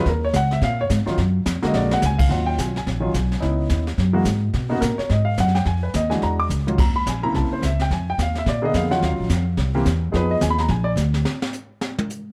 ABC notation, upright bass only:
X:1
M:4/4
L:1/8
Q:"Swing" 1/4=214
K:Ebm
V:1 name="Upright bass" clef=bass
E,,2 D,,2 B,,2 A,, z | G,,2 F,, z B,,,2 ^C,,2 | E,,2 C,,2 B,,,2 C,,2 | D,,2 E,,2 G,,2 A,,2 |
=B,,2 ^A,, z _A,,2 ^F,,2 | F,,2 E,,2 =E,,2 D,,2 | E,,2 B,,,2 =C,, z D,,2 | F,,2 E,,2 B,,2 F,,2 |
(3E,, D,, B,,, F,,2 =C,,2 =E,,2 | F,,2 E,,2 B,,,2 =D,,2 | z8 |]